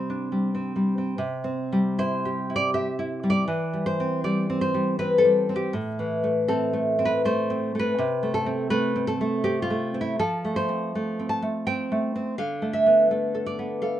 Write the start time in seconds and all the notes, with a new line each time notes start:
Already playing: C3 G3 C4 G4 C5
0.10 D4
0.32 G3
0.55 C4
0.76 G3
0.98 C4
1.18 C3
1.44 C4
1.72 G3
1.99 E4 C5
2.25 G4
2.50 E4
2.56 D5
2.74 G4 E5
2.99 E4
3.23 G3
3.30 D5
3.48 E3
3.73 G3
3.86 C5
4.00 C4
4.24 G3 D5
4.50 C4
4.61 C5
4.74 G3
4.99 C4 B4
5.18 A4
5.24 G3
5.49 C4
5.56 G4
5.73 A2
5.99 E3
6.24 A3
6.48 C4 A4
6.73 A3
6.99 C4
7.05 B4
7.25 A3 C5
7.50 C4
7.75 A3
7.79 B4
7.99 C3
8.23 A3
8.34 A4
8.46 C4
8.70 A3 B4
8.96 C4
9.07 A4
9.21 A3
9.44 C4 G4
9.62 F4
9.70 A3
9.94 C4
10.01 E4
10.19 F3 A4
10.45 A3
10.56 C5
10.69 C4
10.95 A3
11.19 C4
11.29 A5
11.42 A3
11.67 C4 G5
11.92 A3
12.16 C4
12.38 D3 F5
12.62 A3
12.73 E5
12.86 B3
13.11 A3
13.35 A4
13.46 D5
13.59 B3
13.82 A4 F5